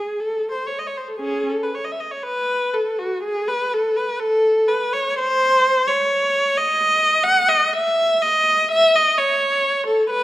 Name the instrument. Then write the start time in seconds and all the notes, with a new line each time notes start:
viola
Already playing: G#4
0.20 A4
0.51 C5
0.67 C#5
0.79 D#5
0.87 C#5
0.97 C5
1.08 A4
1.20 C#4 G#4
1.49 A4
1.63 B4
1.75 C#5
1.84 D#5
1.92 E5
2.00 D#5
2.11 C#5
2.23 B4
2.74 A4
2.99 F#4
3.24 G#4
3.48 B4
3.74 A4
3.97 B4
4.20 A4
4.68 B4
4.93 C#5
5.19 C5
5.87 C#5
6.57 D#5
7.24 F#5
7.49 D#5
7.73 E5
8.22 D#5
8.72 E5
8.95 D#5
9.18 C#5
9.87 A4
10.10 B4